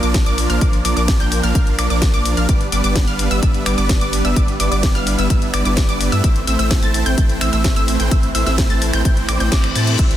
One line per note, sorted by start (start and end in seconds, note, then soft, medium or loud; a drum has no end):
0.00 0.24 A#1 loud
0.00 2.45 F3 medium
0.00 0.23 F3 medium
0.00 2.45 A#3 medium
0.00 0.23 A#3 medium
0.00 4.32 D4 medium
0.00 0.23 D4 medium
0.00 0.23 A#4 medium
0.00 0.23 D5 loud
0.00 0.23 D6 loud
0.00 closed hi-hat soft
0.14 kick loud
0.14 snare loud
0.14 closed hi-hat medium
0.26 0.47 A#1 loud
0.26 0.47 F3 loud
0.26 0.47 A#3 medium
0.26 0.47 D4 medium
0.26 0.47 A#4 medium
0.26 0.47 D5 loud
0.26 0.47 D6 loud
0.26 closed hi-hat soft
0.38 open hi-hat loud
0.50 0.59 A#1 medium
0.50 0.60 F3 medium
0.50 0.60 A#3 medium
0.50 0.60 D4 medium
0.50 0.60 A#4 medium
0.50 0.60 F5 medium
0.50 0.60 F6 medium
0.50 closed hi-hat soft
0.61 0.82 A#1 medium
0.61 0.77 F3 medium
0.61 0.77 A#3 medium
0.61 0.77 D4 medium
0.61 0.77 A#4 medium
0.61 0.77 D5 medium
0.61 0.77 D6 medium
0.61 kick loud
0.61 closed hi-hat medium
0.73 closed hi-hat soft
0.85 0.94 A#1 loud
0.85 0.94 F3 medium
0.85 0.94 A#3 medium
0.85 0.94 D4 medium
0.85 0.94 A#4 medium
0.85 0.94 D5 medium
0.85 0.94 D6 loud
0.85 open hi-hat loud
0.97 1.18 A#1 loud
0.97 1.17 F3 loud
0.97 1.17 A#3 medium
0.97 1.17 D4 medium
0.97 1.17 A#4 medium
0.97 1.17 D5 loud
0.97 1.17 D6 loud
0.97 closed hi-hat soft
1.08 kick loud
1.08 snare loud
1.08 closed hi-hat medium
1.20 1.41 A#1 medium
1.20 1.41 F3 loud
1.20 1.41 A#3 medium
1.20 1.41 D4 medium
1.20 1.41 A#4 medium
1.20 1.41 G5 loud
1.20 1.41 G6 loud
1.20 closed hi-hat soft
1.32 open hi-hat loud
1.43 1.53 A#1 medium
1.43 1.52 F3 loud
1.43 1.52 A#3 medium
1.43 1.52 D4 medium
1.43 1.52 A#4 medium
1.43 1.52 F5 loud
1.43 1.52 F6 loud
1.43 closed hi-hat soft
1.55 1.76 A#1 loud
1.55 1.76 F3 medium
1.55 1.76 A#3 medium
1.55 1.76 D4 medium
1.55 1.76 A#4 medium
1.55 1.76 F5 medium
1.55 1.76 F6 medium
1.55 kick loud
1.55 closed hi-hat medium
1.67 closed hi-hat soft
1.79 1.88 A#1 loud
1.79 1.88 F3 medium
1.79 1.88 A#3 medium
1.79 1.88 D4 medium
1.79 1.88 A#4 medium
1.79 1.88 D5 loud
1.79 1.88 D6 loud
1.79 finger snap medium
1.79 open hi-hat loud
1.90 2.11 A#1 loud
1.90 2.11 F3 medium
1.90 2.11 A#3 medium
1.90 2.11 D4 medium
1.90 2.11 A#4 medium
1.90 2.11 D5 loud
1.90 2.11 D6 loud
1.90 closed hi-hat soft
2.02 kick loud
2.02 snare loud
2.02 closed hi-hat medium
2.14 2.35 A#1 loud
2.14 2.34 F3 loud
2.14 2.34 A#3 medium
2.14 2.34 D4 medium
2.14 2.34 A#4 medium
2.14 2.34 D5 loud
2.14 2.34 D6 loud
2.14 closed hi-hat soft
2.25 open hi-hat loud
2.37 2.47 A#1 medium
2.37 2.47 F3 medium
2.37 2.47 A#3 medium
2.37 2.47 D4 medium
2.37 2.47 A#4 medium
2.37 2.47 F5 medium
2.37 2.47 F6 medium
2.37 closed hi-hat soft
2.49 2.70 G1 medium
2.49 2.65 G3 medium
2.49 6.20 G3 medium
2.49 2.65 B3 medium
2.49 6.20 B3 medium
2.49 2.65 D4 medium
2.49 2.65 B4 medium
2.49 2.65 D5 medium
2.49 2.65 D6 medium
2.49 kick loud
2.49 closed hi-hat medium
2.61 closed hi-hat soft
2.72 2.82 G1 loud
2.72 2.81 G3 medium
2.72 2.81 B3 medium
2.72 2.81 D4 medium
2.72 2.81 B4 medium
2.72 2.81 D5 loud
2.72 2.81 D6 loud
2.72 open hi-hat loud
2.84 3.05 G1 loud
2.84 3.05 G3 loud
2.84 3.05 B3 medium
2.84 3.05 D4 medium
2.84 3.05 B4 medium
2.84 3.05 D5 loud
2.84 3.05 D6 loud
2.84 closed hi-hat soft
2.96 kick loud
2.96 snare loud
2.96 closed hi-hat medium
3.07 3.29 G1 loud
3.07 3.28 G3 medium
3.07 3.28 B3 medium
3.07 3.28 D4 medium
3.07 3.28 B4 medium
3.07 3.28 F5 loud
3.07 3.28 F6 loud
3.07 closed hi-hat soft
3.19 open hi-hat loud
3.31 3.40 G1 medium
3.31 3.40 G3 loud
3.31 3.40 B3 medium
3.31 3.40 D4 medium
3.31 3.40 B4 medium
3.31 3.40 E5 loud
3.31 3.40 E6 loud
3.31 closed hi-hat soft
3.43 3.64 G1 loud
3.43 3.63 G3 medium
3.43 3.63 B3 medium
3.43 3.63 D4 medium
3.43 3.63 B4 medium
3.43 3.63 E5 medium
3.43 3.63 E6 medium
3.43 kick loud
3.43 closed hi-hat medium
3.54 closed hi-hat soft
3.66 3.76 G1 loud
3.66 3.75 G3 medium
3.66 3.75 B3 medium
3.66 3.75 D4 medium
3.66 3.75 B4 medium
3.66 3.75 D5 loud
3.66 3.75 D6 loud
3.66 finger snap medium
3.66 open hi-hat loud
3.78 3.99 G1 loud
3.78 3.98 G3 medium
3.78 3.98 B3 medium
3.78 3.98 D4 medium
3.78 3.98 B4 medium
3.78 3.98 D5 loud
3.78 3.98 D6 loud
3.78 closed hi-hat soft
3.89 kick loud
3.89 snare loud
3.89 closed hi-hat medium
4.01 4.22 G1 loud
4.01 4.22 G3 loud
4.01 4.22 B3 medium
4.01 4.22 D4 medium
4.01 4.22 B4 medium
4.01 4.22 D5 loud
4.01 4.22 D6 loud
4.01 closed hi-hat soft
4.13 open hi-hat loud
4.25 4.34 G1 medium
4.25 4.35 G3 medium
4.25 4.35 B3 medium
4.25 4.35 D4 medium
4.25 4.35 B4 medium
4.25 4.35 E5 medium
4.25 4.35 E6 medium
4.25 closed hi-hat soft
4.36 4.57 G1 loud
4.36 4.52 G3 medium
4.36 4.52 B3 medium
4.36 4.52 D4 medium
4.36 6.22 E4 medium
4.36 4.52 B4 medium
4.36 4.52 D5 medium
4.36 4.52 D6 medium
4.36 kick loud
4.36 closed hi-hat medium
4.48 closed hi-hat soft
4.60 4.69 G1 loud
4.60 4.69 G3 medium
4.60 4.69 B3 medium
4.60 4.69 D4 medium
4.60 4.69 B4 medium
4.60 4.69 D5 medium
4.60 4.69 D6 loud
4.60 open hi-hat loud
4.72 4.93 G1 loud
4.72 4.92 G3 loud
4.72 4.92 B3 medium
4.72 4.92 D4 medium
4.72 4.92 B4 medium
4.72 4.92 D5 loud
4.72 4.92 D6 loud
4.72 closed hi-hat soft
4.83 kick loud
4.83 snare loud
4.83 closed hi-hat loud
4.95 5.16 G1 loud
4.95 5.16 G3 loud
4.95 5.16 B3 medium
4.95 5.16 D4 medium
4.95 5.16 B4 medium
4.95 5.16 F5 loud
4.95 5.16 F6 loud
4.95 closed hi-hat soft
5.07 open hi-hat loud
5.18 5.28 G1 loud
5.18 5.27 G3 loud
5.18 5.27 B3 medium
5.18 5.27 D4 medium
5.18 5.27 B4 medium
5.18 5.27 E5 loud
5.18 5.27 E6 loud
5.18 closed hi-hat soft
5.30 5.51 G1 loud
5.30 5.51 G3 medium
5.30 5.51 B3 medium
5.30 5.51 D4 medium
5.30 5.51 B4 medium
5.30 5.51 E5 medium
5.30 5.51 E6 medium
5.30 kick loud
5.30 closed hi-hat medium
5.42 closed hi-hat soft
5.54 5.63 G1 loud
5.54 5.63 G3 medium
5.54 5.63 B3 medium
5.54 5.63 D4 medium
5.54 5.63 B4 medium
5.54 5.63 D5 loud
5.54 5.63 D6 loud
5.54 finger snap medium
5.54 open hi-hat loud
5.65 5.86 G1 loud
5.65 5.86 G3 medium
5.65 5.86 B3 medium
5.65 5.86 D4 medium
5.65 5.86 B4 medium
5.65 5.86 D5 loud
5.65 5.86 D6 loud
5.65 closed hi-hat soft
5.77 kick loud
5.77 snare loud
5.77 closed hi-hat medium
5.89 6.10 G1 loud
5.89 6.09 G3 loud
5.89 6.09 B3 medium
5.89 6.09 D4 medium
5.89 6.09 B4 medium
5.89 6.09 D5 loud
5.89 6.09 D6 loud
5.89 closed hi-hat soft
6.01 open hi-hat loud
6.12 6.22 G2 loud
6.12 6.22 G3 medium
6.12 6.22 B3 medium
6.12 6.22 D4 medium
6.12 6.22 B4 medium
6.12 6.22 E5 medium
6.12 6.22 E6 medium
6.12 closed hi-hat soft
6.24 6.45 A1 loud
6.24 10.17 E3 medium
6.24 9.95 A3 medium
6.24 6.40 A3 medium
6.24 10.17 C4 medium
6.24 6.40 C4 medium
6.24 6.40 E4 medium
6.24 6.40 C5 medium
6.24 6.40 E5 medium
6.24 6.40 E6 medium
6.24 kick loud
6.24 closed hi-hat loud
6.36 closed hi-hat soft
6.47 6.57 A1 loud
6.47 6.56 A3 medium
6.47 6.56 C4 medium
6.47 6.56 E4 medium
6.47 6.56 C5 medium
6.47 6.56 E5 loud
6.47 6.56 E6 loud
6.47 open hi-hat loud
6.59 6.80 A1 medium
6.59 6.80 A3 loud
6.59 6.80 C4 medium
6.59 6.80 E4 medium
6.59 6.80 C5 medium
6.59 6.80 E5 loud
6.59 6.80 E6 loud
6.59 closed hi-hat soft
6.71 kick loud
6.71 snare loud
6.71 closed hi-hat medium
6.82 7.04 A1 medium
6.82 7.03 A3 loud
6.82 7.03 C4 medium
6.82 7.03 E4 medium
6.82 7.03 C5 medium
6.82 7.03 A5 loud
6.82 7.03 A6 loud
6.82 closed hi-hat soft
6.94 open hi-hat loud
7.06 7.15 A1 loud
7.06 7.15 A3 loud
7.06 7.15 C4 medium
7.06 7.15 E4 medium
7.06 7.15 C5 medium
7.06 7.15 G5 loud
7.06 7.15 G6 loud
7.06 closed hi-hat soft
7.18 7.39 A1 loud
7.18 7.38 A3 medium
7.18 7.38 C4 medium
7.18 7.38 E4 medium
7.18 7.38 C5 medium
7.18 7.38 G5 medium
7.18 7.38 G6 medium
7.18 kick loud
7.18 closed hi-hat medium
7.29 closed hi-hat soft
7.41 7.51 A1 loud
7.41 7.50 A3 medium
7.41 7.50 C4 medium
7.41 7.50 E4 medium
7.41 7.50 C5 medium
7.41 7.50 E5 loud
7.41 7.50 E6 loud
7.41 finger snap medium
7.41 open hi-hat loud
7.53 7.74 A1 loud
7.53 7.73 A3 medium
7.53 7.73 C4 medium
7.53 7.73 E4 medium
7.53 7.73 C5 medium
7.53 7.73 E5 loud
7.53 7.73 E6 loud
7.53 closed hi-hat soft
7.64 kick loud
7.64 snare loud
7.64 closed hi-hat loud
7.76 7.97 A1 loud
7.76 7.97 A3 loud
7.76 7.97 C4 medium
7.76 7.97 E4 medium
7.76 7.97 C5 medium
7.76 7.97 E5 loud
7.76 7.97 E6 loud
7.76 closed hi-hat soft
7.88 open hi-hat loud
8.00 8.09 A1 loud
8.00 8.10 A3 medium
8.00 8.10 C4 medium
8.00 8.10 E4 medium
8.00 8.10 C5 medium
8.00 8.10 G5 medium
8.00 8.10 G6 medium
8.00 closed hi-hat soft
8.11 8.33 A1 loud
8.11 8.27 A3 medium
8.11 8.27 C4 medium
8.11 8.27 E4 medium
8.11 8.27 C5 medium
8.11 8.27 E5 medium
8.11 8.27 E6 medium
8.11 kick loud
8.11 closed hi-hat loud
8.23 closed hi-hat soft
8.35 8.44 A1 loud
8.35 8.44 A3 medium
8.35 8.44 C4 medium
8.35 8.44 E4 medium
8.35 8.44 C5 medium
8.35 8.44 E5 loud
8.35 8.44 E6 loud
8.35 open hi-hat loud
8.46 8.68 A1 medium
8.46 8.67 A3 loud
8.46 8.67 C4 medium
8.46 8.67 E4 medium
8.46 8.67 C5 medium
8.46 8.67 E5 loud
8.46 8.67 E6 loud
8.46 snare soft
8.46 closed hi-hat soft
8.58 kick loud
8.58 snare loud
8.58 closed hi-hat loud
8.70 8.91 A1 loud
8.70 8.91 A3 loud
8.70 8.91 C4 medium
8.70 8.91 E4 medium
8.70 8.91 C5 medium
8.70 8.91 A5 loud
8.70 8.91 A6 loud
8.70 closed hi-hat soft
8.82 open hi-hat loud
8.93 9.03 A1 medium
8.93 9.02 A3 loud
8.93 9.02 C4 medium
8.93 9.02 E4 medium
8.93 9.02 C5 medium
8.93 9.02 G5 loud
8.93 9.02 G6 loud
8.93 finger snap medium
8.93 closed hi-hat soft
9.05 9.26 A1 loud
9.05 9.26 A3 medium
9.05 9.26 C4 medium
9.05 9.26 E4 medium
9.05 9.26 C5 medium
9.05 9.26 G5 medium
9.05 9.26 G6 medium
9.05 kick loud
9.05 closed hi-hat loud
9.05 reverse cymbal medium
9.17 closed hi-hat soft
9.29 9.38 A1 loud
9.29 9.39 A3 medium
9.29 9.39 C4 medium
9.29 9.39 E4 medium
9.29 9.39 C5 medium
9.29 9.39 D5 medium
9.29 9.39 D6 loud
9.29 finger snap medium
9.29 open hi-hat loud
9.40 9.50 A1 loud
9.40 9.49 A3 medium
9.40 9.49 C4 medium
9.40 9.49 E4 medium
9.40 9.49 C5 medium
9.40 9.49 G5 medium
9.40 9.49 G6 medium
9.40 closed hi-hat soft
9.52 9.73 A1 medium
9.52 9.68 A3 medium
9.52 9.68 C4 medium
9.52 9.68 E4 medium
9.52 9.68 C5 medium
9.52 9.68 D5 loud
9.52 9.68 D6 loud
9.52 kick loud
9.52 snare loud
9.52 closed hi-hat loud
9.64 finger snap medium
9.64 closed hi-hat soft
9.75 9.97 A2 loud
9.75 9.96 A3 medium
9.75 9.96 C4 medium
9.75 9.96 E4 medium
9.75 9.96 C5 medium
9.75 9.96 A5 medium
9.75 9.96 A6 medium
9.75 open hi-hat loud
9.87 closed hi-hat soft
9.99 10.17 C2 loud
9.99 10.15 G3 medium
9.99 10.17 G3 medium
9.99 10.15 C4 medium
9.99 10.15 E4 medium
9.99 10.15 C5 medium
9.99 10.15 E5 medium
9.99 10.15 E6 medium
9.99 kick loud
9.99 closed hi-hat loud
9.99 crash medium
9.99 ride medium
10.11 closed hi-hat soft